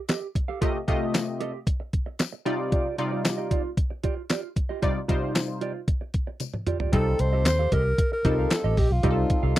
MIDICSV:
0, 0, Header, 1, 7, 480
1, 0, Start_track
1, 0, Tempo, 526316
1, 562, Time_signature, 4, 2, 24, 8
1, 8749, End_track
2, 0, Start_track
2, 0, Title_t, "Alto saxophone"
2, 0, Program_c, 0, 65
2, 6325, Note_on_c, 0, 69, 104
2, 6566, Note_on_c, 0, 72, 103
2, 6580, Note_off_c, 0, 69, 0
2, 6804, Note_off_c, 0, 72, 0
2, 6809, Note_on_c, 0, 72, 113
2, 7049, Note_on_c, 0, 70, 114
2, 7062, Note_off_c, 0, 72, 0
2, 7406, Note_off_c, 0, 70, 0
2, 7411, Note_on_c, 0, 70, 97
2, 7769, Note_on_c, 0, 69, 93
2, 7783, Note_off_c, 0, 70, 0
2, 8010, Note_on_c, 0, 67, 93
2, 8024, Note_off_c, 0, 69, 0
2, 8132, Note_on_c, 0, 65, 89
2, 8146, Note_off_c, 0, 67, 0
2, 8749, Note_off_c, 0, 65, 0
2, 8749, End_track
3, 0, Start_track
3, 0, Title_t, "Clean electric guitar"
3, 0, Program_c, 1, 27
3, 79, Note_on_c, 1, 67, 73
3, 85, Note_on_c, 1, 69, 72
3, 90, Note_on_c, 1, 75, 73
3, 190, Note_off_c, 1, 75, 0
3, 197, Note_off_c, 1, 69, 0
3, 242, Note_off_c, 1, 67, 0
3, 440, Note_on_c, 1, 77, 59
3, 447, Note_on_c, 1, 69, 61
3, 451, Note_on_c, 1, 67, 52
3, 549, Note_off_c, 1, 67, 0
3, 555, Note_off_c, 1, 69, 0
3, 560, Note_on_c, 1, 67, 74
3, 566, Note_on_c, 1, 69, 76
3, 567, Note_off_c, 1, 77, 0
3, 571, Note_on_c, 1, 75, 87
3, 672, Note_off_c, 1, 75, 0
3, 679, Note_off_c, 1, 69, 0
3, 723, Note_off_c, 1, 67, 0
3, 800, Note_on_c, 1, 67, 55
3, 806, Note_on_c, 1, 69, 60
3, 810, Note_on_c, 1, 77, 67
3, 914, Note_off_c, 1, 69, 0
3, 916, Note_off_c, 1, 77, 0
3, 919, Note_off_c, 1, 67, 0
3, 920, Note_on_c, 1, 75, 62
3, 925, Note_on_c, 1, 69, 59
3, 930, Note_on_c, 1, 67, 49
3, 1031, Note_off_c, 1, 67, 0
3, 1035, Note_off_c, 1, 69, 0
3, 1038, Note_off_c, 1, 75, 0
3, 1280, Note_on_c, 1, 67, 70
3, 1286, Note_on_c, 1, 69, 91
3, 1291, Note_on_c, 1, 75, 98
3, 1391, Note_off_c, 1, 75, 0
3, 1398, Note_off_c, 1, 69, 0
3, 1443, Note_off_c, 1, 67, 0
3, 2240, Note_on_c, 1, 65, 78
3, 2247, Note_on_c, 1, 67, 80
3, 2251, Note_on_c, 1, 74, 83
3, 2348, Note_off_c, 1, 74, 0
3, 2354, Note_off_c, 1, 67, 0
3, 2358, Note_off_c, 1, 65, 0
3, 2359, Note_on_c, 1, 74, 55
3, 2365, Note_on_c, 1, 67, 56
3, 2369, Note_on_c, 1, 65, 48
3, 2467, Note_off_c, 1, 65, 0
3, 2473, Note_off_c, 1, 67, 0
3, 2478, Note_off_c, 1, 74, 0
3, 2478, Note_on_c, 1, 65, 80
3, 2484, Note_on_c, 1, 67, 92
3, 2489, Note_on_c, 1, 74, 92
3, 2701, Note_off_c, 1, 65, 0
3, 2704, Note_off_c, 1, 67, 0
3, 2706, Note_off_c, 1, 74, 0
3, 2839, Note_on_c, 1, 74, 60
3, 2844, Note_on_c, 1, 67, 56
3, 2850, Note_on_c, 1, 65, 53
3, 2949, Note_off_c, 1, 65, 0
3, 2953, Note_off_c, 1, 67, 0
3, 2956, Note_off_c, 1, 74, 0
3, 3080, Note_on_c, 1, 75, 56
3, 3085, Note_on_c, 1, 67, 53
3, 3090, Note_on_c, 1, 65, 43
3, 3187, Note_off_c, 1, 65, 0
3, 3193, Note_off_c, 1, 67, 0
3, 3198, Note_on_c, 1, 65, 85
3, 3204, Note_on_c, 1, 67, 75
3, 3205, Note_off_c, 1, 75, 0
3, 3209, Note_on_c, 1, 74, 82
3, 3310, Note_off_c, 1, 74, 0
3, 3317, Note_off_c, 1, 67, 0
3, 3362, Note_off_c, 1, 65, 0
3, 3680, Note_on_c, 1, 65, 78
3, 3686, Note_on_c, 1, 67, 79
3, 3691, Note_on_c, 1, 74, 85
3, 3790, Note_off_c, 1, 74, 0
3, 3798, Note_off_c, 1, 67, 0
3, 3843, Note_off_c, 1, 65, 0
3, 3921, Note_on_c, 1, 65, 80
3, 3926, Note_on_c, 1, 67, 83
3, 3931, Note_on_c, 1, 74, 85
3, 4030, Note_off_c, 1, 74, 0
3, 4037, Note_off_c, 1, 67, 0
3, 4083, Note_off_c, 1, 65, 0
3, 4280, Note_on_c, 1, 75, 52
3, 4285, Note_on_c, 1, 67, 50
3, 4290, Note_on_c, 1, 65, 45
3, 4386, Note_off_c, 1, 65, 0
3, 4392, Note_off_c, 1, 67, 0
3, 4397, Note_on_c, 1, 65, 82
3, 4403, Note_off_c, 1, 75, 0
3, 4403, Note_on_c, 1, 67, 84
3, 4407, Note_on_c, 1, 74, 93
3, 4506, Note_off_c, 1, 74, 0
3, 4513, Note_off_c, 1, 67, 0
3, 4561, Note_off_c, 1, 65, 0
3, 4635, Note_on_c, 1, 65, 53
3, 4641, Note_on_c, 1, 67, 68
3, 4645, Note_on_c, 1, 75, 67
3, 4752, Note_off_c, 1, 67, 0
3, 4753, Note_off_c, 1, 75, 0
3, 4757, Note_off_c, 1, 65, 0
3, 4757, Note_on_c, 1, 74, 61
3, 4763, Note_on_c, 1, 67, 59
3, 4768, Note_on_c, 1, 65, 49
3, 4867, Note_off_c, 1, 65, 0
3, 4871, Note_off_c, 1, 67, 0
3, 4874, Note_off_c, 1, 74, 0
3, 5118, Note_on_c, 1, 65, 73
3, 5124, Note_on_c, 1, 67, 80
3, 5129, Note_on_c, 1, 74, 95
3, 5230, Note_off_c, 1, 74, 0
3, 5237, Note_off_c, 1, 67, 0
3, 5282, Note_off_c, 1, 65, 0
3, 6080, Note_on_c, 1, 65, 67
3, 6086, Note_on_c, 1, 67, 71
3, 6091, Note_on_c, 1, 74, 79
3, 6189, Note_off_c, 1, 74, 0
3, 6195, Note_off_c, 1, 67, 0
3, 6200, Note_off_c, 1, 65, 0
3, 6200, Note_on_c, 1, 74, 56
3, 6206, Note_on_c, 1, 67, 50
3, 6211, Note_on_c, 1, 65, 46
3, 6310, Note_off_c, 1, 67, 0
3, 6318, Note_off_c, 1, 65, 0
3, 6321, Note_on_c, 1, 67, 93
3, 6327, Note_on_c, 1, 69, 93
3, 6328, Note_off_c, 1, 74, 0
3, 6332, Note_on_c, 1, 75, 93
3, 6431, Note_off_c, 1, 75, 0
3, 6438, Note_off_c, 1, 69, 0
3, 6483, Note_off_c, 1, 67, 0
3, 6682, Note_on_c, 1, 75, 66
3, 6688, Note_on_c, 1, 69, 72
3, 6693, Note_on_c, 1, 67, 54
3, 6792, Note_off_c, 1, 67, 0
3, 6795, Note_off_c, 1, 69, 0
3, 6799, Note_off_c, 1, 75, 0
3, 6923, Note_on_c, 1, 77, 58
3, 6928, Note_on_c, 1, 69, 54
3, 6932, Note_on_c, 1, 67, 52
3, 7031, Note_off_c, 1, 67, 0
3, 7036, Note_off_c, 1, 69, 0
3, 7042, Note_on_c, 1, 67, 88
3, 7047, Note_on_c, 1, 69, 101
3, 7048, Note_off_c, 1, 77, 0
3, 7052, Note_on_c, 1, 75, 105
3, 7152, Note_off_c, 1, 75, 0
3, 7159, Note_off_c, 1, 69, 0
3, 7204, Note_off_c, 1, 67, 0
3, 7523, Note_on_c, 1, 67, 84
3, 7529, Note_on_c, 1, 69, 93
3, 7534, Note_on_c, 1, 75, 94
3, 7639, Note_off_c, 1, 69, 0
3, 7641, Note_off_c, 1, 75, 0
3, 7644, Note_off_c, 1, 67, 0
3, 7644, Note_on_c, 1, 77, 73
3, 7650, Note_on_c, 1, 69, 63
3, 7655, Note_on_c, 1, 67, 55
3, 7753, Note_off_c, 1, 67, 0
3, 7756, Note_off_c, 1, 69, 0
3, 7767, Note_off_c, 1, 77, 0
3, 7881, Note_on_c, 1, 75, 96
3, 7887, Note_on_c, 1, 69, 78
3, 7892, Note_on_c, 1, 67, 75
3, 7990, Note_off_c, 1, 67, 0
3, 7996, Note_off_c, 1, 69, 0
3, 8001, Note_off_c, 1, 75, 0
3, 8001, Note_on_c, 1, 67, 62
3, 8007, Note_on_c, 1, 69, 65
3, 8012, Note_on_c, 1, 75, 68
3, 8110, Note_off_c, 1, 75, 0
3, 8118, Note_off_c, 1, 69, 0
3, 8128, Note_off_c, 1, 67, 0
3, 8238, Note_on_c, 1, 67, 104
3, 8244, Note_on_c, 1, 69, 108
3, 8249, Note_on_c, 1, 75, 114
3, 8349, Note_off_c, 1, 75, 0
3, 8357, Note_off_c, 1, 69, 0
3, 8402, Note_off_c, 1, 67, 0
3, 8599, Note_on_c, 1, 77, 61
3, 8604, Note_on_c, 1, 69, 55
3, 8609, Note_on_c, 1, 67, 56
3, 8707, Note_off_c, 1, 67, 0
3, 8711, Note_off_c, 1, 69, 0
3, 8722, Note_off_c, 1, 77, 0
3, 8749, End_track
4, 0, Start_track
4, 0, Title_t, "Analog polysynth"
4, 0, Program_c, 2, 90
4, 559, Note_on_c, 2, 48, 77
4, 561, Note_on_c, 2, 57, 77
4, 562, Note_on_c, 2, 65, 72
4, 565, Note_on_c, 2, 67, 72
4, 567, Note_on_c, 2, 75, 90
4, 708, Note_off_c, 2, 48, 0
4, 709, Note_off_c, 2, 57, 0
4, 709, Note_off_c, 2, 65, 0
4, 711, Note_off_c, 2, 67, 0
4, 712, Note_off_c, 2, 75, 0
4, 800, Note_on_c, 2, 48, 85
4, 801, Note_on_c, 2, 57, 82
4, 802, Note_on_c, 2, 65, 85
4, 805, Note_on_c, 2, 67, 82
4, 807, Note_on_c, 2, 75, 98
4, 1390, Note_off_c, 2, 48, 0
4, 1390, Note_off_c, 2, 57, 0
4, 1391, Note_off_c, 2, 65, 0
4, 1392, Note_off_c, 2, 67, 0
4, 1393, Note_off_c, 2, 75, 0
4, 2238, Note_on_c, 2, 48, 98
4, 2239, Note_on_c, 2, 55, 88
4, 2242, Note_on_c, 2, 63, 81
4, 2244, Note_on_c, 2, 65, 83
4, 2245, Note_on_c, 2, 74, 106
4, 2624, Note_off_c, 2, 48, 0
4, 2625, Note_off_c, 2, 55, 0
4, 2626, Note_off_c, 2, 63, 0
4, 2627, Note_off_c, 2, 65, 0
4, 2628, Note_off_c, 2, 74, 0
4, 2720, Note_on_c, 2, 48, 91
4, 2721, Note_on_c, 2, 55, 78
4, 2723, Note_on_c, 2, 63, 83
4, 2725, Note_on_c, 2, 65, 83
4, 2727, Note_on_c, 2, 74, 89
4, 3310, Note_off_c, 2, 48, 0
4, 3310, Note_off_c, 2, 55, 0
4, 3311, Note_off_c, 2, 63, 0
4, 3312, Note_off_c, 2, 65, 0
4, 3313, Note_off_c, 2, 74, 0
4, 4398, Note_on_c, 2, 48, 88
4, 4400, Note_on_c, 2, 55, 78
4, 4402, Note_on_c, 2, 63, 70
4, 4403, Note_on_c, 2, 65, 75
4, 4406, Note_on_c, 2, 74, 90
4, 4547, Note_off_c, 2, 48, 0
4, 4548, Note_off_c, 2, 55, 0
4, 4549, Note_off_c, 2, 63, 0
4, 4550, Note_off_c, 2, 65, 0
4, 4551, Note_off_c, 2, 74, 0
4, 4637, Note_on_c, 2, 48, 88
4, 4638, Note_on_c, 2, 55, 80
4, 4640, Note_on_c, 2, 63, 75
4, 4642, Note_on_c, 2, 65, 81
4, 4643, Note_on_c, 2, 72, 95
4, 5228, Note_off_c, 2, 48, 0
4, 5229, Note_off_c, 2, 55, 0
4, 5229, Note_off_c, 2, 63, 0
4, 5230, Note_off_c, 2, 65, 0
4, 5231, Note_off_c, 2, 72, 0
4, 6315, Note_on_c, 2, 55, 78
4, 6318, Note_on_c, 2, 60, 65
4, 6320, Note_on_c, 2, 63, 70
4, 6321, Note_on_c, 2, 65, 62
4, 6324, Note_on_c, 2, 69, 83
4, 6907, Note_off_c, 2, 55, 0
4, 6909, Note_off_c, 2, 60, 0
4, 6910, Note_off_c, 2, 63, 0
4, 6910, Note_off_c, 2, 65, 0
4, 6912, Note_off_c, 2, 69, 0
4, 7521, Note_on_c, 2, 55, 72
4, 7522, Note_on_c, 2, 60, 72
4, 7524, Note_on_c, 2, 63, 73
4, 7525, Note_on_c, 2, 65, 67
4, 7528, Note_on_c, 2, 69, 87
4, 7963, Note_off_c, 2, 55, 0
4, 7963, Note_off_c, 2, 60, 0
4, 7964, Note_off_c, 2, 63, 0
4, 7965, Note_off_c, 2, 65, 0
4, 7967, Note_off_c, 2, 69, 0
4, 8238, Note_on_c, 2, 55, 74
4, 8241, Note_on_c, 2, 60, 67
4, 8242, Note_on_c, 2, 63, 70
4, 8245, Note_on_c, 2, 65, 62
4, 8245, Note_on_c, 2, 67, 64
4, 8301, Note_off_c, 2, 67, 0
4, 8304, Note_on_c, 2, 69, 83
4, 8749, Note_off_c, 2, 55, 0
4, 8749, Note_off_c, 2, 60, 0
4, 8749, Note_off_c, 2, 63, 0
4, 8749, Note_off_c, 2, 65, 0
4, 8749, Note_off_c, 2, 69, 0
4, 8749, End_track
5, 0, Start_track
5, 0, Title_t, "Fingered electric bass"
5, 0, Program_c, 3, 33
5, 6321, Note_on_c, 3, 36, 105
5, 6501, Note_off_c, 3, 36, 0
5, 6562, Note_on_c, 3, 36, 104
5, 6801, Note_off_c, 3, 36, 0
5, 6801, Note_on_c, 3, 39, 100
5, 6981, Note_off_c, 3, 39, 0
5, 7041, Note_on_c, 3, 36, 94
5, 7221, Note_off_c, 3, 36, 0
5, 7522, Note_on_c, 3, 36, 92
5, 7701, Note_off_c, 3, 36, 0
5, 7882, Note_on_c, 3, 33, 86
5, 7971, Note_off_c, 3, 33, 0
5, 8000, Note_on_c, 3, 34, 99
5, 8091, Note_off_c, 3, 34, 0
5, 8122, Note_on_c, 3, 35, 92
5, 8212, Note_off_c, 3, 35, 0
5, 8241, Note_on_c, 3, 36, 114
5, 8421, Note_off_c, 3, 36, 0
5, 8601, Note_on_c, 3, 36, 96
5, 8691, Note_off_c, 3, 36, 0
5, 8749, End_track
6, 0, Start_track
6, 0, Title_t, "Muted clean electric guitar strokes"
6, 201, Note_on_c, 9, 29, 42
6, 292, Note_off_c, 9, 29, 0
6, 322, Note_on_c, 9, 29, 42
6, 413, Note_off_c, 9, 29, 0
6, 683, Note_on_c, 9, 29, 46
6, 774, Note_off_c, 9, 29, 0
6, 1042, Note_on_c, 9, 29, 34
6, 1133, Note_off_c, 9, 29, 0
6, 1161, Note_on_c, 9, 29, 42
6, 1252, Note_off_c, 9, 29, 0
6, 1402, Note_on_c, 9, 29, 38
6, 1493, Note_off_c, 9, 29, 0
6, 1521, Note_on_c, 9, 29, 37
6, 1613, Note_off_c, 9, 29, 0
6, 1642, Note_on_c, 9, 29, 50
6, 1733, Note_off_c, 9, 29, 0
6, 1881, Note_on_c, 9, 29, 40
6, 1972, Note_off_c, 9, 29, 0
6, 2001, Note_on_c, 9, 29, 36
6, 2092, Note_off_c, 9, 29, 0
6, 2120, Note_on_c, 9, 29, 50
6, 2212, Note_off_c, 9, 29, 0
6, 2719, Note_on_c, 9, 29, 36
6, 2811, Note_off_c, 9, 29, 0
6, 2960, Note_on_c, 9, 29, 34
6, 3051, Note_off_c, 9, 29, 0
6, 3321, Note_on_c, 9, 29, 44
6, 3412, Note_off_c, 9, 29, 0
6, 3442, Note_on_c, 9, 29, 42
6, 3533, Note_off_c, 9, 29, 0
6, 3561, Note_on_c, 9, 29, 42
6, 3652, Note_off_c, 9, 29, 0
6, 3801, Note_on_c, 9, 29, 48
6, 3892, Note_off_c, 9, 29, 0
6, 4041, Note_on_c, 9, 29, 48
6, 4132, Note_off_c, 9, 29, 0
6, 4161, Note_on_c, 9, 29, 35
6, 4252, Note_off_c, 9, 29, 0
6, 4517, Note_on_c, 9, 29, 41
6, 4608, Note_off_c, 9, 29, 0
6, 5000, Note_on_c, 9, 29, 42
6, 5091, Note_off_c, 9, 29, 0
6, 5241, Note_on_c, 9, 29, 43
6, 5332, Note_off_c, 9, 29, 0
6, 5360, Note_on_c, 9, 29, 36
6, 5451, Note_off_c, 9, 29, 0
6, 5482, Note_on_c, 9, 29, 41
6, 5573, Note_off_c, 9, 29, 0
6, 5721, Note_on_c, 9, 29, 45
6, 5812, Note_off_c, 9, 29, 0
6, 5842, Note_on_c, 9, 29, 36
6, 5933, Note_off_c, 9, 29, 0
6, 5961, Note_on_c, 9, 29, 43
6, 6052, Note_off_c, 9, 29, 0
6, 6442, Note_on_c, 9, 29, 46
6, 6533, Note_off_c, 9, 29, 0
6, 6562, Note_on_c, 9, 29, 42
6, 6653, Note_off_c, 9, 29, 0
6, 6803, Note_on_c, 9, 29, 50
6, 6894, Note_off_c, 9, 29, 0
6, 7163, Note_on_c, 9, 29, 44
6, 7254, Note_off_c, 9, 29, 0
6, 7285, Note_on_c, 9, 29, 38
6, 7376, Note_off_c, 9, 29, 0
6, 7404, Note_on_c, 9, 29, 51
6, 7495, Note_off_c, 9, 29, 0
6, 8121, Note_on_c, 9, 29, 51
6, 8212, Note_off_c, 9, 29, 0
6, 8360, Note_on_c, 9, 29, 54
6, 8452, Note_off_c, 9, 29, 0
6, 8480, Note_on_c, 9, 29, 43
6, 8572, Note_off_c, 9, 29, 0
6, 8718, Note_on_c, 9, 29, 42
6, 8749, Note_off_c, 9, 29, 0
6, 8749, End_track
7, 0, Start_track
7, 0, Title_t, "Drums"
7, 78, Note_on_c, 9, 42, 84
7, 80, Note_on_c, 9, 54, 66
7, 86, Note_on_c, 9, 38, 105
7, 89, Note_on_c, 9, 39, 81
7, 170, Note_off_c, 9, 42, 0
7, 171, Note_off_c, 9, 54, 0
7, 177, Note_off_c, 9, 38, 0
7, 180, Note_off_c, 9, 39, 0
7, 322, Note_on_c, 9, 36, 93
7, 327, Note_on_c, 9, 42, 66
7, 414, Note_off_c, 9, 36, 0
7, 418, Note_off_c, 9, 42, 0
7, 563, Note_on_c, 9, 36, 94
7, 563, Note_on_c, 9, 42, 73
7, 654, Note_off_c, 9, 36, 0
7, 655, Note_off_c, 9, 42, 0
7, 803, Note_on_c, 9, 42, 66
7, 804, Note_on_c, 9, 36, 88
7, 894, Note_off_c, 9, 42, 0
7, 895, Note_off_c, 9, 36, 0
7, 1043, Note_on_c, 9, 42, 82
7, 1045, Note_on_c, 9, 54, 82
7, 1047, Note_on_c, 9, 38, 106
7, 1050, Note_on_c, 9, 39, 86
7, 1134, Note_off_c, 9, 42, 0
7, 1136, Note_off_c, 9, 54, 0
7, 1138, Note_off_c, 9, 38, 0
7, 1141, Note_off_c, 9, 39, 0
7, 1282, Note_on_c, 9, 42, 66
7, 1373, Note_off_c, 9, 42, 0
7, 1521, Note_on_c, 9, 36, 102
7, 1524, Note_on_c, 9, 42, 83
7, 1612, Note_off_c, 9, 36, 0
7, 1616, Note_off_c, 9, 42, 0
7, 1763, Note_on_c, 9, 42, 58
7, 1764, Note_on_c, 9, 36, 88
7, 1854, Note_off_c, 9, 42, 0
7, 1855, Note_off_c, 9, 36, 0
7, 1999, Note_on_c, 9, 42, 82
7, 2000, Note_on_c, 9, 54, 70
7, 2006, Note_on_c, 9, 38, 102
7, 2009, Note_on_c, 9, 39, 82
7, 2090, Note_off_c, 9, 42, 0
7, 2091, Note_off_c, 9, 54, 0
7, 2097, Note_off_c, 9, 38, 0
7, 2100, Note_off_c, 9, 39, 0
7, 2245, Note_on_c, 9, 42, 71
7, 2336, Note_off_c, 9, 42, 0
7, 2482, Note_on_c, 9, 42, 73
7, 2483, Note_on_c, 9, 36, 100
7, 2573, Note_off_c, 9, 42, 0
7, 2574, Note_off_c, 9, 36, 0
7, 2722, Note_on_c, 9, 42, 66
7, 2813, Note_off_c, 9, 42, 0
7, 2963, Note_on_c, 9, 42, 84
7, 2963, Note_on_c, 9, 54, 86
7, 2967, Note_on_c, 9, 38, 116
7, 2970, Note_on_c, 9, 39, 85
7, 3054, Note_off_c, 9, 42, 0
7, 3054, Note_off_c, 9, 54, 0
7, 3058, Note_off_c, 9, 38, 0
7, 3061, Note_off_c, 9, 39, 0
7, 3201, Note_on_c, 9, 36, 93
7, 3202, Note_on_c, 9, 42, 66
7, 3293, Note_off_c, 9, 36, 0
7, 3293, Note_off_c, 9, 42, 0
7, 3441, Note_on_c, 9, 36, 106
7, 3444, Note_on_c, 9, 42, 85
7, 3533, Note_off_c, 9, 36, 0
7, 3535, Note_off_c, 9, 42, 0
7, 3680, Note_on_c, 9, 42, 63
7, 3683, Note_on_c, 9, 36, 75
7, 3771, Note_off_c, 9, 42, 0
7, 3774, Note_off_c, 9, 36, 0
7, 3918, Note_on_c, 9, 42, 80
7, 3920, Note_on_c, 9, 54, 66
7, 3925, Note_on_c, 9, 38, 98
7, 3928, Note_on_c, 9, 39, 81
7, 4009, Note_off_c, 9, 42, 0
7, 4011, Note_off_c, 9, 54, 0
7, 4016, Note_off_c, 9, 38, 0
7, 4019, Note_off_c, 9, 39, 0
7, 4162, Note_on_c, 9, 36, 90
7, 4164, Note_on_c, 9, 42, 72
7, 4253, Note_off_c, 9, 36, 0
7, 4255, Note_off_c, 9, 42, 0
7, 4401, Note_on_c, 9, 42, 70
7, 4402, Note_on_c, 9, 36, 95
7, 4492, Note_off_c, 9, 42, 0
7, 4494, Note_off_c, 9, 36, 0
7, 4642, Note_on_c, 9, 42, 70
7, 4643, Note_on_c, 9, 36, 85
7, 4734, Note_off_c, 9, 36, 0
7, 4734, Note_off_c, 9, 42, 0
7, 4882, Note_on_c, 9, 42, 88
7, 4882, Note_on_c, 9, 54, 85
7, 4886, Note_on_c, 9, 38, 108
7, 4890, Note_on_c, 9, 39, 92
7, 4973, Note_off_c, 9, 54, 0
7, 4974, Note_off_c, 9, 42, 0
7, 4977, Note_off_c, 9, 38, 0
7, 4981, Note_off_c, 9, 39, 0
7, 5120, Note_on_c, 9, 42, 62
7, 5211, Note_off_c, 9, 42, 0
7, 5360, Note_on_c, 9, 36, 110
7, 5362, Note_on_c, 9, 42, 81
7, 5452, Note_off_c, 9, 36, 0
7, 5453, Note_off_c, 9, 42, 0
7, 5598, Note_on_c, 9, 42, 64
7, 5602, Note_on_c, 9, 36, 81
7, 5689, Note_off_c, 9, 42, 0
7, 5693, Note_off_c, 9, 36, 0
7, 5835, Note_on_c, 9, 42, 81
7, 5839, Note_on_c, 9, 48, 50
7, 5840, Note_on_c, 9, 54, 68
7, 5926, Note_off_c, 9, 42, 0
7, 5931, Note_off_c, 9, 48, 0
7, 5931, Note_off_c, 9, 54, 0
7, 5960, Note_on_c, 9, 47, 53
7, 6052, Note_off_c, 9, 47, 0
7, 6079, Note_on_c, 9, 45, 77
7, 6081, Note_on_c, 9, 42, 73
7, 6170, Note_off_c, 9, 45, 0
7, 6173, Note_off_c, 9, 42, 0
7, 6201, Note_on_c, 9, 43, 79
7, 6292, Note_off_c, 9, 43, 0
7, 6319, Note_on_c, 9, 42, 91
7, 6321, Note_on_c, 9, 36, 113
7, 6410, Note_off_c, 9, 42, 0
7, 6412, Note_off_c, 9, 36, 0
7, 6559, Note_on_c, 9, 42, 80
7, 6650, Note_off_c, 9, 42, 0
7, 6798, Note_on_c, 9, 42, 92
7, 6802, Note_on_c, 9, 38, 127
7, 6803, Note_on_c, 9, 54, 99
7, 6805, Note_on_c, 9, 39, 99
7, 6889, Note_off_c, 9, 42, 0
7, 6893, Note_off_c, 9, 38, 0
7, 6894, Note_off_c, 9, 54, 0
7, 6896, Note_off_c, 9, 39, 0
7, 7040, Note_on_c, 9, 36, 106
7, 7040, Note_on_c, 9, 42, 73
7, 7131, Note_off_c, 9, 36, 0
7, 7131, Note_off_c, 9, 42, 0
7, 7281, Note_on_c, 9, 36, 113
7, 7282, Note_on_c, 9, 42, 94
7, 7372, Note_off_c, 9, 36, 0
7, 7373, Note_off_c, 9, 42, 0
7, 7521, Note_on_c, 9, 42, 73
7, 7522, Note_on_c, 9, 36, 94
7, 7612, Note_off_c, 9, 42, 0
7, 7614, Note_off_c, 9, 36, 0
7, 7756, Note_on_c, 9, 42, 91
7, 7760, Note_on_c, 9, 54, 77
7, 7763, Note_on_c, 9, 38, 114
7, 7766, Note_on_c, 9, 39, 98
7, 7847, Note_off_c, 9, 42, 0
7, 7852, Note_off_c, 9, 54, 0
7, 7854, Note_off_c, 9, 38, 0
7, 7857, Note_off_c, 9, 39, 0
7, 8001, Note_on_c, 9, 36, 99
7, 8002, Note_on_c, 9, 46, 76
7, 8092, Note_off_c, 9, 36, 0
7, 8093, Note_off_c, 9, 46, 0
7, 8238, Note_on_c, 9, 42, 84
7, 8241, Note_on_c, 9, 36, 103
7, 8329, Note_off_c, 9, 42, 0
7, 8332, Note_off_c, 9, 36, 0
7, 8480, Note_on_c, 9, 42, 75
7, 8482, Note_on_c, 9, 36, 97
7, 8571, Note_off_c, 9, 42, 0
7, 8573, Note_off_c, 9, 36, 0
7, 8749, End_track
0, 0, End_of_file